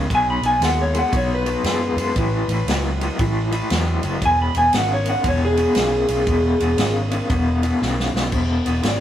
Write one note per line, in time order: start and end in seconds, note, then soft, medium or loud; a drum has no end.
0.10 0.36 B1 medium
0.10 0.40 B2 loud
0.10 0.40 F#3 loud
0.10 kick medium
0.10 ride medium
0.15 0.29 G#5 loud
0.30 0.45 B5 medium
0.41 0.57 B1 medium
0.41 0.60 B2 medium
0.41 0.60 F#3 medium
0.41 ride medium
0.46 0.62 G#5 medium
0.60 1.01 D#2 medium
0.60 0.91 B2 medium
0.60 0.91 G#3 medium
0.60 snare loud
0.60 ride medium
0.65 0.80 F#5 medium
0.82 0.97 C#5 medium
0.93 1.10 B2 medium
0.93 1.11 G#3 medium
0.93 ride medium
0.99 1.14 F#5 medium
1.12 1.53 B1 medium
1.12 1.42 B2 medium
1.12 1.42 F#3 medium
1.12 kick loud
1.12 ride medium
1.17 1.32 C#5 medium
1.35 2.83 B4 loud
1.46 1.63 B2 medium
1.46 1.63 F#3 medium
1.46 ride medium
1.63 1.90 F#2 medium
1.63 1.94 B2 medium
1.63 1.94 G#3 medium
1.63 snare loud
1.63 ride medium
1.96 2.11 F#2 medium
1.96 2.14 B2 medium
1.96 2.14 G#3 medium
1.96 ride medium
2.16 2.42 A1 medium
2.16 2.46 A2 medium
2.16 2.46 E3 loud
2.16 kick medium
2.16 ride medium
2.48 2.63 A1 medium
2.48 2.66 A2 medium
2.48 2.66 E3 medium
2.48 ride medium
2.67 3.08 C#2 medium
2.67 2.97 A2 medium
2.67 2.98 F#3 medium
2.67 snare loud
2.67 ride medium
3.01 3.17 A2 medium
3.01 3.18 F#3 medium
3.01 ride medium
3.19 3.60 A1 medium
3.19 3.49 A2 medium
3.19 3.49 E3 medium
3.19 kick loud
3.19 ride medium
3.51 3.68 A2 medium
3.51 3.68 E3 medium
3.51 ride medium
3.70 3.97 E2 medium
3.70 4.00 A2 medium
3.70 4.00 F#3 loud
3.70 snare loud
3.70 ride medium
4.03 4.18 F#1 medium
4.03 4.20 A2 medium
4.03 4.20 F#3 medium
4.03 ride medium
4.22 4.48 E1 medium
4.22 4.51 E2 medium
4.22 4.51 B2 medium
4.22 4.40 G#5 loud
4.22 kick medium
4.22 ride medium
4.42 4.57 B5 medium
4.54 4.69 E1 medium
4.54 4.71 E2 medium
4.54 4.72 B2 medium
4.54 4.73 G#5 medium
4.54 ride medium
4.73 5.14 G#1 medium
4.73 5.03 E2 medium
4.73 5.04 C#3 medium
4.73 4.91 F#5 loud
4.73 snare loud
4.73 ride medium
4.93 5.08 C#5 medium
5.06 5.23 E2 medium
5.06 5.23 C#3 medium
5.06 5.25 F#5 medium
5.06 ride medium
5.24 5.65 E1 loud
5.24 5.54 E2 medium
5.24 5.54 B2 medium
5.24 kick loud
5.24 ride medium
5.28 5.43 C#5 medium
5.45 6.93 G#4 loud
5.57 5.74 E2 medium
5.57 5.74 B2 medium
5.57 ride medium
5.75 6.02 B1 medium
5.75 6.05 E2 medium
5.75 6.06 C#3 medium
5.75 snare loud
5.75 ride medium
6.08 6.23 B1 medium
6.08 6.25 E2 medium
6.08 6.25 C#3 medium
6.08 ride medium
6.26 6.53 E1 medium
6.26 6.57 E2 medium
6.26 6.57 B2 loud
6.26 kick loud
6.26 ride medium
6.60 6.75 E1 medium
6.60 6.76 E2 medium
6.60 6.77 B2 medium
6.60 ride medium
6.78 7.19 G#1 medium
6.78 7.08 E2 medium
6.78 7.08 C#3 medium
6.78 snare loud
6.78 ride medium
7.10 7.28 E2 medium
7.10 7.28 C#3 medium
7.10 ride medium
7.30 7.71 E1 loud
7.30 7.60 E2 medium
7.30 7.60 B2 medium
7.30 kick loud
7.30 ride medium
7.62 7.79 E2 medium
7.62 7.80 B2 medium
7.62 ride medium
7.81 8.08 B1 medium
7.81 8.11 E2 medium
7.81 8.11 C#3 medium
7.81 snare medium
8.00 snare medium
8.14 8.29 B1 medium
8.14 8.31 E2 medium
8.14 8.31 C#3 medium
8.14 snare loud
8.32 8.59 E1 medium
8.32 8.62 E2 medium
8.32 8.63 B2 medium
8.32 kick loud
8.32 crash medium
8.65 8.80 E1 medium
8.65 8.82 E2 medium
8.65 8.82 B2 medium
8.65 ride medium
8.83 9.00 G#1 medium
8.83 9.00 E2 medium
8.83 9.00 C#3 medium
8.83 snare loud
8.83 ride medium
8.88 9.00 D5 medium